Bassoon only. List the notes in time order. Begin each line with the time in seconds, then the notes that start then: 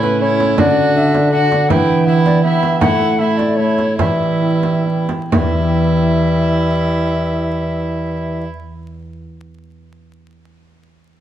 Already playing: C#4
0.22 C#4
0.57 D4
1.32 D4
1.69 B3
2.06 B3
2.44 B3
2.81 A3
3.19 A3
3.58 A3
3.99 G3
5.33 G3